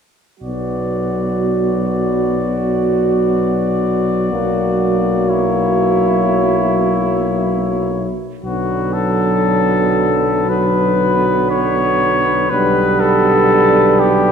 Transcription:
0.39 4.29 B1 soft
0.39 4.28 F#3 soft
0.39 4.34 B3 soft
0.39 5.32 F#4 soft
0.39 5.30 D5 soft
4.32 8.08 B1 soft
4.32 8.08 F#3 soft
4.32 8.12 A#3 soft
5.29 8.12 E4 soft
5.29 8.12 C#5 soft
8.43 12.48 B1 soft
8.43 10.45 D3 soft
8.43 10.46 F#3 soft
8.43 10.46 B3 soft
8.43 8.95 F#4 soft
8.93 10.51 A4 medium
10.48 12.47 D3 soft
10.48 12.48 F#3 soft
10.48 12.48 B3 soft
10.48 11.50 B4 medium
11.51 12.52 C#5 medium
12.50 14.32 B1 soft
12.50 14.32 D3 medium
12.50 14.32 G3 medium
12.50 14.32 B3 medium
12.50 13.02 B4 medium
13.00 14.01 A4 medium
14.00 14.32 G4 medium

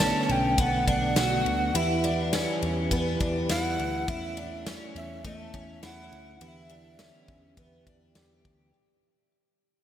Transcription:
0.00 0.11 B1 loud
0.00 1.71 D3 medium
0.00 1.71 A3 medium
0.00 1.73 B3 medium
0.00 0.58 C#4 medium
0.00 0.33 A5 loud
0.00 snare loud
0.00 ride medium
0.00 tambourine medium
0.29 0.55 B1 loud
0.29 0.62 G5 medium
0.29 ride soft
0.58 0.84 B1 loud
0.58 0.87 B3 medium
0.58 0.88 F#5 medium
0.58 kick loud
0.58 ride medium
0.87 1.13 B1 loud
0.87 1.17 D4 medium
0.87 1.78 F#5 loud
0.87 kick medium
0.87 ride soft
1.16 1.43 B1 loud
1.16 1.75 F#4 medium
1.16 snare loud
1.16 ride medium
1.16 tambourine medium
1.46 1.72 D2 medium
1.46 ride soft
1.74 2.44 E2 loud
1.74 4.06 E3 medium
1.74 6.37 E4 medium
1.74 2.04 E4 medium
1.74 4.05 G4 medium
1.74 4.06 B4 medium
1.74 2.34 E5 medium
1.74 ride medium
2.04 2.33 D4 medium
2.04 ride soft
2.33 2.91 C#4 medium
2.33 snare loud
2.33 ride medium
2.33 tambourine medium
2.62 2.88 E2 loud
2.62 ride soft
2.91 3.17 E2 loud
2.91 3.20 B3 medium
2.91 kick medium
2.91 ride medium
3.20 3.46 E2 loud
3.20 3.50 D4 medium
3.20 kick medium
3.20 ride soft
3.49 3.76 E2 loud
3.49 4.07 E4 medium
3.49 4.11 F#5 loud
3.49 snare loud
3.49 ride medium
3.49 tambourine medium
3.79 4.05 D2 loud
3.79 ride soft
4.08 4.77 E2 loud
4.08 6.39 A3 medium
4.08 6.39 C#4 medium
4.08 4.37 E4 medium
4.08 4.67 E5 loud
4.08 kick loud
4.08 ride medium
4.37 4.66 D4 medium
4.37 ride soft
4.66 5.25 C#4 medium
4.66 snare loud
4.66 ride medium
4.66 tambourine medium
4.96 5.21 E2 loud
4.96 5.24 E5 medium
4.96 ride medium
5.24 5.50 E2 loud
5.24 5.54 A3 medium
5.24 5.80 E5 loud
5.24 kick medium
5.24 ride medium
5.54 5.80 E2 loud
5.54 5.83 C#4 medium
5.54 kick medium
5.54 ride soft
5.83 6.09 E2 loud
5.83 6.40 E4 medium
5.83 6.43 F#5 loud
5.83 snare loud
5.83 ride medium
5.83 tambourine medium
6.12 6.38 D2 medium
6.12 ride soft
6.41 7.10 E2 loud
6.41 8.72 D3 medium
6.41 8.72 E3 medium
6.41 8.72 B3 medium
6.41 6.70 E4 medium
6.41 8.72 G4 medium
6.41 6.49 F#5 loud
6.41 ride medium
6.48 8.17 E5 loud
6.69 6.99 D4 medium
6.69 ride soft
6.99 7.57 C#4 medium
6.99 snare loud
6.99 ride medium
6.99 tambourine medium
7.28 7.54 E2 loud
7.28 kick loud
7.28 ride soft
7.57 7.83 E2 loud
7.57 7.86 B3 medium
7.57 kick medium
7.57 ride medium
7.87 8.12 E2 loud
7.87 8.16 D4 medium
7.87 kick medium
7.87 ride soft
8.15 8.42 E2 loud
8.15 8.74 G4 medium
8.15 snare loud
8.15 ride medium
8.15 tambourine medium
8.45 8.71 D2 medium
8.45 kick medium
8.45 ride soft

